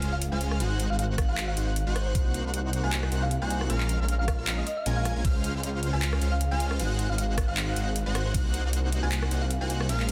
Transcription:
Already playing: sub drop
0.02 C#2 G#3 C#4 F4 C5 F5 F6, closed hi-hat
0.12 F5
0.22 closed hi-hat
0.32 C#2 G#3 C#4 F4 C5 F5 G#5 F6
0.41 closed hi-hat
0.51 cross-stick
0.60 G#1 G#3 D#4 F#4 C5 F#5 F#6, closed hi-hat
0.80 closed hi-hat
0.90 G#1 G#3 D#4 F#4 C5 F5 F#5 F#6
0.99 F5, closed hi-hat
1.18 kick, cross-stick, closed hi-hat
1.29 G#1 G#3 D#4 F#4 C5 F5 F#5 F#6
1.37 F5, clap, closed hi-hat
1.48 F5
1.57 G#1 G#3 D#4 F#4 C5 F#5 F#6, closed hi-hat
1.76 closed hi-hat
1.87 G#1 G#3 D#4 F#4 C5 F#5 F#6
1.95 C5, cross-stick, closed hi-hat
2.06 C5
2.15 C2 A#3 D#4 F#4 C5 F#5 F#6, kick, closed hi-hat
2.34 closed hi-hat
2.45 C2 A#3 D#4 F#4 C5 F#5 F#6
2.54 closed hi-hat
2.73 closed hi-hat
2.83 C2 A#3 D#4 F#4 C5 F#5 G#5 F#6
2.92 G#5, clap, closed hi-hat
3.03 cross-stick
3.12 C2 A#3 D#4 F#4 C5 F#5 F#6, closed hi-hat
3.22 F5
3.31 closed hi-hat
3.42 C2 A#3 D#4 F#4 C5 F#5 G#5 F#6
3.50 closed hi-hat
3.61 cross-stick
3.70 A#1 G#3 C#4 F4 A#4 F5 F6, closed hi-hat
3.80 clap
3.89 closed hi-hat
4.00 A#1 G#3 C#4 F4 A#4 F5 F6
4.08 closed hi-hat
4.19 F5
4.28 F5, kick, cross-stick, closed hi-hat
4.38 A#1 G#3 C#4 F4 A#4 F5 F6
4.47 clap, closed hi-hat
4.58 D#5
4.66 D#5, closed hi-hat
4.77 F5
4.86 A#1 G#3 C#4 F4 A#4 G#5 G#6, closed hi-hat
4.96 F5
5.05 F5, cross-stick, closed hi-hat
5.16 A#1 G#3 C#4 F4 A#4 G#5 G#6
5.25 C#2 G#3 C5 F6, kick, closed hi-hat, ride
5.44 closed hi-hat
5.54 C#2 G#3 C#4 F4 C5 F5 F6
5.63 closed hi-hat
5.83 closed hi-hat
5.93 C#2 G#3 C#4 F4 C5 F5 G#5 F6
6.02 G#5, clap, closed hi-hat, ride
6.13 cross-stick
6.21 C#2 G#3 C#4 F4 C5 F5 F6, closed hi-hat
6.32 F5
6.41 closed hi-hat
6.51 C#2 G#3 C#4 F4 C5 F5 G#5 F6
6.60 closed hi-hat
6.71 cross-stick
6.79 G#1 G#3 D#4 F#4 C5 F#5 F#6, closed hi-hat, ride
6.99 closed hi-hat
7.09 G#1 G#3 D#4 F#4 C5 F5 F#5 F#6
7.18 F5, closed hi-hat
7.38 kick, cross-stick, closed hi-hat
7.48 G#1 G#3 D#4 F#4 C5 F5 F#5 F#6
7.57 clap, closed hi-hat, ride
7.67 F5
7.76 G#1 G#3 D#4 F#4 C5 F#5 F#6, closed hi-hat
7.96 closed hi-hat
8.06 G#1 G#3 D#4 F#4 C5 F#5 F#6
8.15 C5, cross-stick, closed hi-hat
8.25 C5
8.34 C2 A#3 D#4 C5 F#6, kick, closed hi-hat, ride
8.54 closed hi-hat
8.64 C2 A#3 D#4 F#4 C5 F#5 F#6
8.73 closed hi-hat
8.92 closed hi-hat
9.03 C2 A#3 D#4 F#4 C5 F#5 G#5 F#6
9.12 clap, closed hi-hat, ride
9.22 cross-stick
9.31 C2 A#3 D#4 F#4 C5 F#5 F#6, closed hi-hat
9.42 F5
9.51 closed hi-hat
9.61 C2 A#3 D#4 F#4 C5 F#5 G#5 F#6
9.70 closed hi-hat
9.81 cross-stick
9.89 A#1 G#3 C#4 F4 A#4 F5 F6, closed hi-hat, ride
10.00 clap
10.09 closed hi-hat

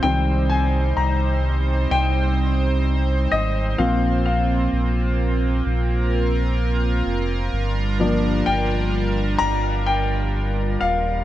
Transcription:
Already playing: C4 C5
0.03 C2 D#3 G3 C4 D#4 G5
0.50 G#5
0.97 C2 A#5
1.91 C2 G5
3.32 G#1 D#5
3.78 A#1 F3 A#3 C4 F4 F5
4.26 F5
4.73 A#1
5.66 A#1 A#4
7.06 F1
7.53 G1 G3 D4
7.99 F3 A#3 D4
8.46 G1 G5
9.39 G1 A#5
9.86 G5
10.81 D#1 F5

